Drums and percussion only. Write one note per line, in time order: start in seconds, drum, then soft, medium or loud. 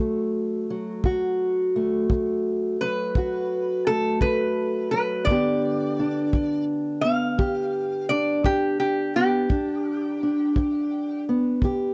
1.04 kick medium
2.10 kick medium
3.15 kick medium
4.21 kick medium
5.27 kick medium
6.33 kick medium
7.39 kick medium
8.44 kick medium
9.50 kick medium
10.56 kick medium
11.62 kick medium